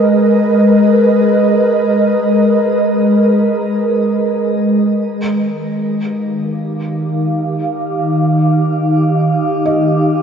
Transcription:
Already playing: ambient pad G#3 G#4 A#4 B4 D#5
5.04 ambient pad D#3
5.28 ambient pad F5
5.33 ambient pad D#4
5.39 ambient pad G4
5.53 ambient pad D6
9.65 felt piano D#5

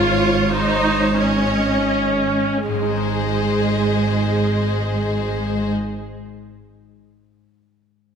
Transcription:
Already playing: double bass section G#1, cello section G#2, harp G#2 D#4 G4 C#5, viola section F4, violin section C5 C#5
0.52 viola section D#4, violin section C5 C#5
1.21 viola section C#4, violin section C#5 D#5
2.67 double bass section G#1, cello section G#2, harp G#2, viola section G#3, violin section G#4 C5 D#5
2.75 harp G#3
2.82 harp D#4
2.89 harp G#4
2.96 harp C5
3.03 harp G#5

